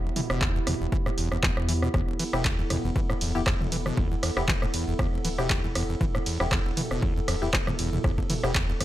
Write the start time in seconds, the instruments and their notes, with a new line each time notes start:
Already playing: analog synth pad B3 E4 G4
0.05 acid bass E1
0.16 acid bass E3, mid tom, open hi-hat
0.30 analog synth bass E1, acid bass B2, cross-stick
0.41 acid bass D2, kick, clap
0.55 acid bass E2
0.67 acid bass E2, cross-stick, mid tom, open hi-hat
0.81 analog synth bass E1, acid bass E2
0.92 acid bass E3, kick
1.06 acid bass A2, cross-stick
1.18 analog synth bass E1, acid bass E2, open hi-hat
1.32 acid bass E2, cross-stick
1.43 acid bass E2, kick, cross-stick, clap
1.57 acid bass E1, analog synth bass E2, cross-stick
1.69 acid bass E3, open hi-hat
1.82 acid bass B2, cross-stick
1.94 analog synth bass E1, acid bass E2, analog synth pad A4, kick, cross-stick
2.08 acid bass E1
2.19 acid bass E3, open hi-hat, ride
2.33 analog synth bass E1, acid bass B2, synth stab B3 E4 G4, cross-stick
2.45 acid bass D2, kick, clap
2.59 acid bass E2
2.70 acid bass E2, cross-stick, mid tom, open hi-hat, ride
2.84 analog synth bass E1, acid bass E2
2.96 acid bass E3, kick
3.10 acid bass A2, cross-stick
3.21 analog synth bass D1, acid bass E2, open hi-hat, ride
3.35 acid bass E2, synth stab B3 E4 G4
3.47 acid bass E2, kick, cross-stick, clap
3.60 analog synth bass E1, acid bass E1, mid tom
3.72 acid bass E3, open hi-hat, ride
3.86 acid bass B2, cross-stick, mid tom
3.97 analog synth bass E1, acid bass D2, kick
4.11 acid bass E2
4.23 acid bass E2, cross-stick, open hi-hat, ride
4.37 analog synth bass E1, acid bass E2, synth stab B3 E4 G4, cross-stick
4.48 acid bass E3, kick, clap
4.62 acid bass A2, cross-stick
4.74 acid bass E2, open hi-hat, ride
4.88 analog synth bass E1, acid bass E2
4.99 acid bass E2, kick, cross-stick
5.13 acid bass E1
5.25 analog synth bass D1, acid bass E3, open hi-hat, ride
5.38 acid bass B2, synth stab B3 E4 G4, cross-stick
5.50 acid bass D2, kick, clap
5.64 analog synth bass E1, acid bass E2
5.75 acid bass E2, cross-stick, open hi-hat, ride
5.89 acid bass E2
6.01 analog synth bass E1, acid bass E3, kick
6.15 acid bass A2, cross-stick
6.26 acid bass E2, open hi-hat, ride
6.40 analog synth bass E1, acid bass E2, synth stab B3 E4 G4, cross-stick
6.52 acid bass E2, kick, cross-stick, clap
6.66 acid bass E1
6.77 acid bass E3, mid tom, open hi-hat, ride
6.91 analog synth bass E1, acid bass B2, cross-stick
7.03 acid bass D2, kick
7.16 acid bass E2
7.28 analog synth bass D1, acid bass E2, cross-stick, open hi-hat, ride
7.42 acid bass E2, synth stab B3 E4 G4
7.53 acid bass E3, kick, cross-stick, clap
7.67 analog synth bass E1, acid bass A2, cross-stick, mid tom
7.79 acid bass E2, open hi-hat, ride
7.93 acid bass E2, mid tom
8.04 analog synth bass E1, acid bass E2, kick, cross-stick
8.18 acid bass E1, kick
8.30 acid bass E3, mid tom, open hi-hat, ride
8.43 analog synth bass E1, acid bass B2, synth stab B3 E4 G4, cross-stick
8.55 acid bass D2, kick, clap
8.69 acid bass E2
8.81 acid bass E2, cross-stick, mid tom, open hi-hat, ride